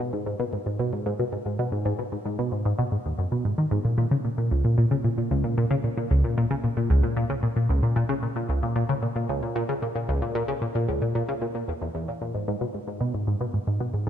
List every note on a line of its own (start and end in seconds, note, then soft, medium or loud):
0.00 0.12 B2 loud
0.13 0.25 G#2 medium
0.26 0.34 G#2 medium
0.40 0.44 B2 loud
0.53 0.58 G#2 medium
0.66 0.78 G#2 medium
0.79 0.91 B2 loud
0.93 1.05 G#2 medium
1.06 1.14 G#2 loud
1.19 1.24 B2 medium
1.32 1.37 G#2 medium
1.46 1.58 G#2 medium
1.59 1.71 B2 loud
1.72 1.84 G#2 medium
1.85 1.93 G#2 loud
1.99 2.04 B2 loud
2.12 2.17 G#2 medium
2.26 2.37 G#2 medium
2.39 2.51 B2 loud
2.52 2.64 G#2 medium
2.65 2.73 G#2 loud
2.79 2.83 B2 loud
2.92 2.97 G#2 medium
3.05 3.13 D#2 medium
3.19 3.26 F#2 medium
3.32 3.44 B2 medium
3.45 3.53 G#2 medium
3.58 3.66 D#3 medium
3.71 3.79 G#2 loud
3.85 3.97 A#2 medium
3.98 4.06 A#2 loud
4.11 4.16 C#3 loud
4.25 4.29 A#2 medium
4.38 4.50 A#2 medium
4.51 4.63 C#2 loud
4.64 4.76 A#2 medium
4.78 4.86 A#2 medium
4.91 4.96 C#3 medium
5.04 5.09 A#2 medium
5.18 5.29 A#2 medium
5.31 5.43 C#2 loud
5.44 5.56 A#2 medium
5.58 5.65 A#2 loud
5.71 5.75 C#3 loud
5.84 5.89 A#2 medium
5.97 6.09 A#2 medium
6.11 6.22 C#2 loud
6.24 6.36 A#2 medium
6.37 6.45 A#2 loud
6.51 6.55 C#3 loud
6.64 6.68 A#2 medium
6.77 6.89 A#2 medium
6.90 7.02 C#2 loud
7.03 7.15 A#2 medium
7.17 7.24 A#2 loud
7.30 7.35 C#3 loud
7.43 7.48 A#2 medium
7.56 7.68 A#2 medium
7.69 7.81 C#2 loud
7.83 7.95 A#2 medium
7.96 8.04 A#2 loud
8.09 8.14 C#3 loud
8.23 8.27 A#2 medium
8.36 8.48 A#2 medium
8.49 8.61 C#2 loud
8.63 8.75 A#2 medium
8.76 8.84 A#2 loud
8.89 8.94 C#3 loud
9.02 9.07 A#2 medium
9.16 9.28 A#2 medium
9.29 9.41 C#2 loud
9.43 9.54 A#2 medium
9.56 9.63 A#2 loud
9.69 9.74 C#3 loud
9.82 9.87 A#2 medium
9.95 10.07 A#2 medium
10.09 10.21 C#2 loud
10.22 10.34 A#2 medium
10.35 10.43 A#2 loud
10.48 10.53 C#3 loud
10.62 10.66 A#2 medium
10.75 10.87 A#2 medium
10.88 11.00 C#2 loud
11.02 11.14 A#2 medium
11.15 11.23 A#2 loud
11.28 11.33 C#3 loud
11.42 11.46 A#2 medium
11.55 11.63 A#2 medium
11.68 11.73 E2 medium
11.81 11.89 E2 medium
11.95 12.06 E2 medium
12.08 12.13 A#2 medium
12.21 12.33 A#2 medium
12.35 12.46 G#2 medium
12.48 12.56 G#2 loud
12.61 12.66 B2 loud
12.74 12.79 G#2 medium
12.87 12.99 G#2 medium
13.01 13.12 B2 loud
13.14 13.26 G#2 medium
13.27 13.35 G#2 medium
13.41 13.45 B2 loud
13.54 13.59 G#2 medium
13.67 13.79 G#2 medium
13.80 13.92 B2 loud
13.94 14.06 G#2 medium